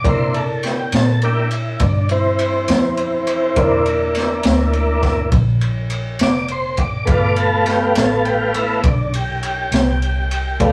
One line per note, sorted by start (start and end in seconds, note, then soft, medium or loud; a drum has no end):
0.04 0.90 C3 medium
0.04 0.44 A#3 medium
0.04 0.44 D4 soft
0.04 3.53 E4 medium
0.04 0.45 E4 medium
0.04 3.53 A#4 medium
0.04 0.34 C5 medium
0.04 3.53 D5 medium
0.04 kick loud
0.04 ride medium
0.34 0.63 A4 medium
0.34 ride medium
0.63 0.92 G4 medium
0.63 snare soft
0.63 ride medium
0.92 1.78 A#2 medium
0.92 1.22 A4 medium
0.92 snare loud
0.92 ride medium
1.22 1.49 A#3 soft
1.22 1.50 D4 soft
1.22 1.50 E4 medium
1.22 1.52 G4 medium
1.22 ride medium
1.51 1.80 E4 medium
1.51 ride medium
1.80 2.66 G2 medium
1.80 2.10 D4 medium
1.80 kick loud
1.80 ride medium
2.09 3.83 E3 medium
2.09 3.83 C4 medium
2.09 ride medium
2.39 ride medium
2.68 3.54 F2 medium
2.68 snare loud
2.68 ride medium
2.97 ride medium
3.27 ride medium
3.56 4.42 E2 medium
3.56 5.02 A#3 medium
3.56 5.03 D4 soft
3.56 5.03 E4 medium
3.56 7.05 E4 medium
3.56 7.05 A#4 medium
3.56 7.05 D5 medium
3.56 kick loud
3.56 ride medium
3.86 ride medium
4.15 snare soft
4.15 ride medium
4.43 5.30 D2 medium
4.43 snare loud
4.43 ride medium
4.73 ride medium
5.03 5.30 A#3 soft
5.03 5.30 D4 soft
5.03 5.30 E4 soft
5.03 kick medium
5.03 snare soft
5.03 ride medium
5.32 6.18 A#1 medium
5.32 kick loud
5.32 ride medium
5.61 ride medium
5.90 ride medium
6.19 7.06 F1 medium
6.19 6.50 D5 loud
6.19 snare loud
6.19 ride medium
6.48 6.79 C5 loud
6.48 ride medium
6.77 7.07 D5 medium
6.77 kick medium
6.77 ride medium
7.05 7.93 G1 medium
7.05 8.53 A3 medium
7.05 8.53 B3 medium
7.05 8.54 F4 medium
7.05 10.56 F4 medium
7.05 10.56 A4 medium
7.05 10.56 B4 medium
7.05 7.37 D5 medium
7.05 kick loud
7.05 ride medium
7.36 7.66 A4 medium
7.36 ride medium
7.66 7.95 G4 medium
7.66 snare soft
7.66 ride medium
7.95 8.82 A1 medium
7.95 8.25 A4 medium
7.95 snare loud
7.95 ride medium
8.25 8.54 G4 medium
8.25 ride medium
8.54 8.81 A3 soft
8.54 8.81 B3 soft
8.54 8.84 E4 medium
8.54 8.82 F4 medium
8.54 ride medium
8.83 9.69 B1 medium
8.83 9.13 D4 medium
8.83 kick loud
8.83 ride medium
9.14 10.72 G4 medium
9.14 ride medium
9.43 ride medium
9.71 10.57 C2 medium
9.71 snare loud
9.71 ride medium
10.02 ride medium
10.31 ride medium
10.60 10.72 D2 medium
10.60 10.72 A3 medium
10.60 10.72 B3 soft
10.60 10.72 F4 medium
10.60 10.72 A4 medium
10.60 10.72 D5 medium
10.60 kick loud
10.60 ride medium